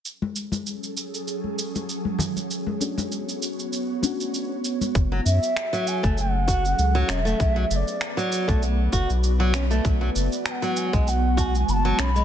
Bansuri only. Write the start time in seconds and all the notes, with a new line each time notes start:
5.25 E5
5.87 G#5
6.18 F#5
7.10 E5
7.71 D5 E5
10.46 G#5
10.51 F#5
10.77 G#5
11.08 F#5
11.38 G#5 A5
11.69 A5 B5
12.01 B5